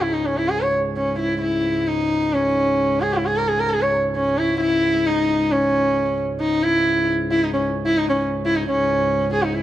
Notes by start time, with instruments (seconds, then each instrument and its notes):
Already playing: harmonium C#2 G#2
0.02 sarangi E4
0.13 sarangi D#4
0.26 sarangi C#4
0.37 sarangi E4
0.49 sarangi G#4
0.61 sarangi C#5
0.97 sarangi C#4
1.19 sarangi E4
1.41 sarangi E4
1.87 sarangi D#4
2.33 sarangi C#4
3.01 sarangi G#4
3.14 sarangi E4
3.26 sarangi G#4
3.37 sarangi A#4
3.48 sarangi G#4
3.59 sarangi A#4
3.70 sarangi G#4
3.81 sarangi C#5
4.15 sarangi C#4
4.38 sarangi E4
4.61 sarangi E4
5.07 sarangi D#4
5.52 sarangi C#4
6.40 sarangi D#4
6.63 sarangi E4
7.31 sarangi E4
7.43 sarangi D#4
7.53 sarangi C#4
7.86 sarangi E4
7.98 sarangi D#4
8.09 sarangi C#4
8.45 sarangi E4
8.56 sarangi D#4
8.65 harmonium C#2 G#2, sarangi C#4
9.33 sarangi G#4
9.43 sarangi D#4
9.54 sarangi E4